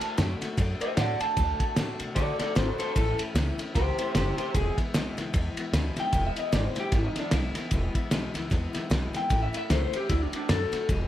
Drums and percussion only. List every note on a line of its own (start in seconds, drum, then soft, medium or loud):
0.01 ride medium
0.18 snare loud
0.18 ride medium
0.42 snare soft
0.42 ride medium
0.58 kick loud
0.58 ride medium
0.81 ride medium
0.97 snare loud
0.97 ride loud
1.21 ride medium
1.37 kick loud
1.37 ride medium
1.60 kick medium
1.60 ride medium
1.76 snare loud
1.76 ride medium
2.00 ride medium
2.16 kick loud
2.16 snare soft
2.16 ride medium
2.40 snare soft
2.40 ride medium
2.56 snare loud
2.56 ride medium
2.80 ride medium
2.96 kick loud
2.96 ride medium
3.19 ride medium
3.36 snare loud
3.36 ride medium
3.59 ride medium
3.75 kick loud
3.75 snare soft
3.75 ride medium
3.99 ride medium
4.15 snare loud
4.15 ride loud
4.38 ride medium
4.55 kick loud
4.55 ride medium
4.78 kick medium
4.78 ride medium
4.94 snare loud
4.94 ride medium
5.18 snare soft
5.18 ride medium
5.34 kick loud
5.34 ride medium
5.57 ride medium
5.74 snare loud
5.74 ride loud
5.97 snare soft
5.97 ride medium
6.13 kick loud
6.13 ride medium
6.36 ride medium
6.53 snare loud
6.53 ride medium
6.76 snare soft
6.76 ride medium
6.92 kick loud
6.92 snare soft
6.92 ride medium
7.16 snare soft
7.16 ride medium
7.31 snare loud
7.31 ride loud
7.55 snare soft
7.55 ride medium
7.71 kick loud
7.71 ride medium
7.95 kick medium
7.95 ride medium
8.11 snare loud
8.11 ride medium
8.35 snare soft
8.35 ride medium
8.51 kick loud
8.51 snare soft
8.51 ride medium
8.75 snare soft
8.75 ride medium
8.91 snare loud
8.91 ride medium
9.14 snare soft
9.14 ride medium
9.30 kick loud
9.30 ride medium
9.54 ride medium
9.70 snare loud
9.70 ride medium
9.93 ride medium
10.10 kick loud
10.10 snare soft
10.10 ride medium
10.33 ride medium
10.49 snare loud
10.49 ride loud
10.73 snare soft
10.73 ride medium
10.89 kick loud
10.89 ride medium